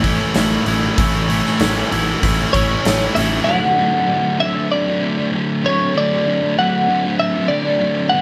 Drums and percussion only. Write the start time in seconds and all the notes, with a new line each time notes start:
0.04 kick, open hi-hat
0.35 snare, open hi-hat
0.66 open hi-hat
0.98 kick, open hi-hat
1.30 open hi-hat
1.46 snare
1.60 snare, open hi-hat
1.92 open hi-hat
2.23 kick, open hi-hat
2.54 kick, open hi-hat
2.85 snare, open hi-hat
3.16 open hi-hat